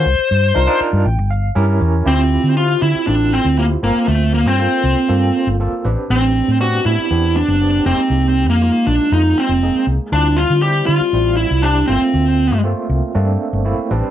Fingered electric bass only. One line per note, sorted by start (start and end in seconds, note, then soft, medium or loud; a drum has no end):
0.05 0.16 C2 loud
0.31 0.51 G2 medium
0.56 0.66 C2 medium
0.80 muted fingered electric bass stroke soft
0.93 1.03 G2 medium
1.05 1.16 A1 loud
1.18 1.49 G1 loud
1.56 1.79 G2 medium
1.81 2.04 E2 medium
2.06 2.37 D2 medium
2.44 2.74 D3 medium
2.82 2.92 D3 medium
2.95 muted fingered electric bass stroke soft
3.08 3.38 A1 medium
3.45 3.75 D2 medium
3.83 3.93 G1 medium
4.08 4.46 D2 medium
4.46 4.66 G2 medium
4.84 4.94 C2 medium
5.09 5.30 G2 medium
5.47 5.67 G1 medium
5.72 muted fingered electric bass stroke soft
5.85 5.95 A1 medium
6.10 6.41 A1 medium
6.48 6.78 A2 medium
6.85 6.96 A2 medium
6.98 muted fingered electric bass stroke soft
7.11 7.41 E2 medium
7.48 7.79 F#1 medium
7.86 7.96 F1 medium
7.98 muted fingered electric bass stroke soft
8.10 8.49 C2 medium
8.49 8.69 F2 medium
8.87 8.97 A#1 medium
9.12 9.32 F2 medium
9.49 9.70 F1 medium
9.75 muted fingered electric bass stroke soft
9.87 9.98 C2 medium
10.12 10.43 D2 medium
10.50 10.81 D3 medium
10.88 10.99 D3 medium
11.00 muted fingered electric bass stroke soft
11.13 11.44 A1 medium
11.51 11.82 C2 medium
11.89 12.00 G1 medium
12.01 muted fingered electric bass stroke soft
12.14 12.52 D2 medium
12.52 12.73 G2 medium
12.89 13.00 C2 medium
13.15 13.36 G2 medium
13.53 13.74 G1 medium
13.78 muted fingered electric bass stroke soft
13.91 14.01 A1 medium